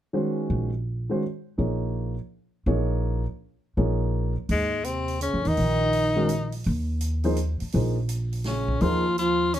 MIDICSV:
0, 0, Header, 1, 7, 480
1, 0, Start_track
1, 0, Tempo, 361446
1, 197, Time_signature, 3, 2, 24, 8
1, 12745, End_track
2, 0, Start_track
2, 0, Title_t, "Grand piano"
2, 0, Program_c, 0, 0
2, 175, Note_on_c, 0, 51, 47
2, 180, Note_on_c, 0, 56, 43
2, 180, Note_on_c, 0, 61, 44
2, 183, Note_on_c, 0, 66, 44
2, 187, Note_on_c, 0, 72, 47
2, 916, Note_off_c, 0, 51, 0
2, 918, Note_off_c, 0, 56, 0
2, 918, Note_off_c, 0, 61, 0
2, 920, Note_off_c, 0, 66, 0
2, 922, Note_off_c, 0, 72, 0
2, 1453, Note_on_c, 0, 51, 41
2, 1461, Note_on_c, 0, 56, 39
2, 1469, Note_on_c, 0, 66, 42
2, 1474, Note_on_c, 0, 61, 38
2, 1477, Note_on_c, 0, 72, 51
2, 1613, Note_off_c, 0, 51, 0
2, 1617, Note_off_c, 0, 56, 0
2, 1620, Note_off_c, 0, 66, 0
2, 1623, Note_off_c, 0, 61, 0
2, 1624, Note_off_c, 0, 72, 0
2, 2094, Note_on_c, 0, 63, 39
2, 2095, Note_on_c, 0, 58, 37
2, 2099, Note_on_c, 0, 68, 38
2, 2100, Note_on_c, 0, 53, 37
2, 2114, Note_on_c, 0, 73, 41
2, 2836, Note_off_c, 0, 58, 0
2, 2836, Note_off_c, 0, 63, 0
2, 2839, Note_off_c, 0, 53, 0
2, 2839, Note_off_c, 0, 68, 0
2, 2846, Note_off_c, 0, 73, 0
2, 3541, Note_on_c, 0, 53, 55
2, 3546, Note_on_c, 0, 58, 46
2, 3549, Note_on_c, 0, 63, 47
2, 3550, Note_on_c, 0, 68, 42
2, 3552, Note_on_c, 0, 73, 57
2, 4279, Note_off_c, 0, 53, 0
2, 4282, Note_off_c, 0, 58, 0
2, 4283, Note_off_c, 0, 63, 0
2, 4284, Note_off_c, 0, 68, 0
2, 4285, Note_off_c, 0, 73, 0
2, 5006, Note_on_c, 0, 58, 45
2, 5011, Note_on_c, 0, 53, 49
2, 5014, Note_on_c, 0, 63, 43
2, 5018, Note_on_c, 0, 68, 48
2, 5019, Note_on_c, 0, 73, 51
2, 5732, Note_off_c, 0, 58, 0
2, 5734, Note_off_c, 0, 53, 0
2, 5736, Note_off_c, 0, 63, 0
2, 5737, Note_off_c, 0, 68, 0
2, 5738, Note_off_c, 0, 73, 0
2, 8184, Note_on_c, 0, 56, 42
2, 8188, Note_on_c, 0, 51, 52
2, 8192, Note_on_c, 0, 66, 47
2, 8192, Note_on_c, 0, 70, 60
2, 8193, Note_on_c, 0, 61, 48
2, 8337, Note_off_c, 0, 56, 0
2, 8339, Note_off_c, 0, 51, 0
2, 8341, Note_off_c, 0, 61, 0
2, 8341, Note_off_c, 0, 66, 0
2, 8341, Note_off_c, 0, 70, 0
2, 9616, Note_on_c, 0, 63, 52
2, 9618, Note_on_c, 0, 58, 47
2, 9624, Note_on_c, 0, 53, 52
2, 9626, Note_on_c, 0, 68, 49
2, 9628, Note_on_c, 0, 72, 61
2, 9772, Note_off_c, 0, 63, 0
2, 9774, Note_off_c, 0, 58, 0
2, 9776, Note_off_c, 0, 53, 0
2, 9778, Note_off_c, 0, 68, 0
2, 9779, Note_off_c, 0, 72, 0
2, 10271, Note_on_c, 0, 58, 38
2, 10275, Note_on_c, 0, 53, 45
2, 10278, Note_on_c, 0, 63, 41
2, 10281, Note_on_c, 0, 68, 40
2, 10291, Note_on_c, 0, 72, 45
2, 10553, Note_off_c, 0, 58, 0
2, 10555, Note_off_c, 0, 53, 0
2, 10557, Note_off_c, 0, 63, 0
2, 10559, Note_off_c, 0, 68, 0
2, 10564, Note_off_c, 0, 72, 0
2, 11706, Note_on_c, 0, 53, 52
2, 11708, Note_on_c, 0, 58, 51
2, 11716, Note_on_c, 0, 68, 47
2, 11721, Note_on_c, 0, 63, 51
2, 11726, Note_on_c, 0, 72, 56
2, 11991, Note_off_c, 0, 53, 0
2, 11992, Note_off_c, 0, 58, 0
2, 11996, Note_off_c, 0, 68, 0
2, 11998, Note_off_c, 0, 63, 0
2, 12001, Note_off_c, 0, 72, 0
2, 12745, End_track
3, 0, Start_track
3, 0, Title_t, "Tenor saxophone"
3, 0, Program_c, 1, 66
3, 5991, Note_on_c, 1, 56, 72
3, 6438, Note_on_c, 1, 60, 72
3, 6458, Note_off_c, 1, 56, 0
3, 6918, Note_off_c, 1, 60, 0
3, 6935, Note_on_c, 1, 61, 70
3, 7278, Note_on_c, 1, 63, 87
3, 7298, Note_off_c, 1, 61, 0
3, 8692, Note_off_c, 1, 63, 0
3, 11249, Note_on_c, 1, 61, 70
3, 11714, Note_on_c, 1, 65, 93
3, 11734, Note_off_c, 1, 61, 0
3, 12194, Note_off_c, 1, 65, 0
3, 12202, Note_on_c, 1, 65, 77
3, 12674, Note_on_c, 1, 61, 67
3, 12694, Note_off_c, 1, 65, 0
3, 12745, Note_off_c, 1, 61, 0
3, 12745, End_track
4, 0, Start_track
4, 0, Title_t, "Trombone"
4, 0, Program_c, 2, 57
4, 5979, Note_on_c, 2, 44, 58
4, 6426, Note_on_c, 2, 48, 61
4, 6446, Note_off_c, 2, 44, 0
4, 6911, Note_off_c, 2, 48, 0
4, 6917, Note_on_c, 2, 49, 61
4, 7229, Note_on_c, 2, 51, 79
4, 7249, Note_off_c, 2, 49, 0
4, 8668, Note_off_c, 2, 51, 0
4, 11237, Note_on_c, 2, 49, 60
4, 11723, Note_on_c, 2, 53, 76
4, 11743, Note_off_c, 2, 49, 0
4, 12199, Note_off_c, 2, 53, 0
4, 12210, Note_on_c, 2, 53, 69
4, 12737, Note_off_c, 2, 53, 0
4, 12745, End_track
5, 0, Start_track
5, 0, Title_t, "Upright bass"
5, 0, Program_c, 3, 32
5, 662, Note_on_c, 3, 34, 58
5, 1443, Note_off_c, 3, 34, 0
5, 2105, Note_on_c, 3, 34, 54
5, 2885, Note_off_c, 3, 34, 0
5, 3536, Note_on_c, 3, 34, 65
5, 4320, Note_off_c, 3, 34, 0
5, 5009, Note_on_c, 3, 34, 61
5, 5776, Note_off_c, 3, 34, 0
5, 5962, Note_on_c, 3, 39, 64
5, 7026, Note_off_c, 3, 39, 0
5, 7087, Note_on_c, 3, 41, 49
5, 7231, Note_off_c, 3, 41, 0
5, 7243, Note_on_c, 3, 40, 61
5, 7389, Note_off_c, 3, 40, 0
5, 7405, Note_on_c, 3, 34, 66
5, 8787, Note_off_c, 3, 34, 0
5, 8850, Note_on_c, 3, 39, 75
5, 10061, Note_off_c, 3, 39, 0
5, 10281, Note_on_c, 3, 34, 67
5, 11664, Note_off_c, 3, 34, 0
5, 11705, Note_on_c, 3, 39, 66
5, 12745, Note_off_c, 3, 39, 0
5, 12745, End_track
6, 0, Start_track
6, 0, Title_t, "Muted upright bass strokes"
6, 10114, Note_on_c, 9, 29, 32
6, 10246, Note_off_c, 9, 29, 0
6, 12745, End_track
7, 0, Start_track
7, 0, Title_t, "Drums"
7, 5961, Note_on_c, 9, 46, 35
7, 6094, Note_off_c, 9, 46, 0
7, 6433, Note_on_c, 9, 42, 42
7, 6566, Note_off_c, 9, 42, 0
7, 6745, Note_on_c, 9, 46, 30
7, 6878, Note_off_c, 9, 46, 0
7, 6917, Note_on_c, 9, 42, 43
7, 7050, Note_off_c, 9, 42, 0
7, 7237, Note_on_c, 9, 46, 29
7, 7369, Note_off_c, 9, 46, 0
7, 7397, Note_on_c, 9, 46, 34
7, 7530, Note_off_c, 9, 46, 0
7, 7873, Note_on_c, 9, 46, 37
7, 8006, Note_off_c, 9, 46, 0
7, 8349, Note_on_c, 9, 42, 42
7, 8481, Note_off_c, 9, 42, 0
7, 8662, Note_on_c, 9, 46, 31
7, 8794, Note_off_c, 9, 46, 0
7, 8819, Note_on_c, 9, 46, 34
7, 8952, Note_off_c, 9, 46, 0
7, 9304, Note_on_c, 9, 42, 46
7, 9436, Note_off_c, 9, 42, 0
7, 9609, Note_on_c, 9, 46, 29
7, 9742, Note_off_c, 9, 46, 0
7, 9781, Note_on_c, 9, 42, 37
7, 9914, Note_off_c, 9, 42, 0
7, 10093, Note_on_c, 9, 46, 30
7, 10226, Note_off_c, 9, 46, 0
7, 10257, Note_on_c, 9, 46, 36
7, 10389, Note_off_c, 9, 46, 0
7, 10739, Note_on_c, 9, 42, 43
7, 10872, Note_off_c, 9, 42, 0
7, 11056, Note_on_c, 9, 46, 31
7, 11189, Note_off_c, 9, 46, 0
7, 11211, Note_on_c, 9, 46, 35
7, 11216, Note_on_c, 9, 38, 28
7, 11343, Note_off_c, 9, 46, 0
7, 11349, Note_off_c, 9, 38, 0
7, 11532, Note_on_c, 9, 36, 46
7, 11665, Note_off_c, 9, 36, 0
7, 11694, Note_on_c, 9, 46, 33
7, 11827, Note_off_c, 9, 46, 0
7, 12188, Note_on_c, 9, 42, 39
7, 12321, Note_off_c, 9, 42, 0
7, 12666, Note_on_c, 9, 42, 42
7, 12745, Note_off_c, 9, 42, 0
7, 12745, End_track
0, 0, End_of_file